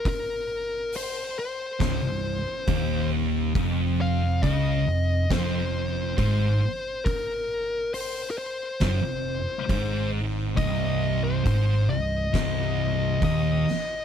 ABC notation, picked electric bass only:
X:1
M:4/4
L:1/16
Q:1/4=68
K:Cm
V:1 name="Picked electric bass" clef=bass
z8 _D,,, C,,,2 z E,,,4 | F,,,4 _D,,2 F,,,2 F,,,4 A,,,2 z2 | z8 ^F,,, =F,,,2 z A,,,4 | C,,,4 A,,,2 C,,,2 C,,,4 E,,,2 z2 |]